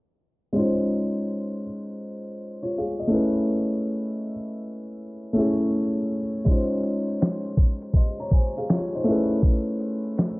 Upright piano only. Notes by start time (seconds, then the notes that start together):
0.53 G#3 C#4 D#4
0.57 F4 C5
2.63 F4 C#5
2.78 G#4 F5
3.00 D#5
3.07 A3 C#4 E4
3.12 G#4 B4
5.33 A3 C#4 E4
5.38 G#4 C#5
6.45 G#3 C#4 D#4
6.50 F4 C5
7.96 D#5 C6
8.20 C#5 A#5
8.33 C5 G#5
8.57 G#4 F5
8.72 F4 C#5
8.95 D#4 C5
9.04 A3 C#4 E4
9.08 G#4 B4